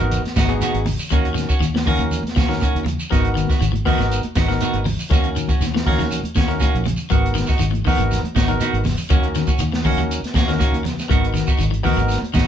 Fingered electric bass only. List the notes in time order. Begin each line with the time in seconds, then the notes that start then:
0.00 G#1
0.37 G#1
0.74 G#1
1.12 D#2
1.50 muted fingered electric bass stroke
1.60 D#2
1.99 D#2
2.24 muted fingered electric bass stroke
2.37 D#2
2.75 D#2
3.12 G#1
3.61 G#1
3.99 G#1
4.36 G#1
4.74 G#1
5.11 D#2
5.49 muted fingered electric bass stroke
5.61 D#2
5.99 D#2
6.23 muted fingered electric bass stroke
6.37 D#2
6.75 A#1
7.12 G#1
7.49 muted fingered electric bass stroke
7.61 G#1
7.98 G#1
8.36 G#1
8.73 G#1
9.11 D#2
9.48 muted fingered electric bass stroke
9.60 D#2
9.97 D#2
10.22 muted fingered electric bass stroke
10.36 D#2
10.72 D#2
11.11 G#1
11.48 muted fingered electric bass stroke
11.59 G#1
11.96 G#1
12.35 G#1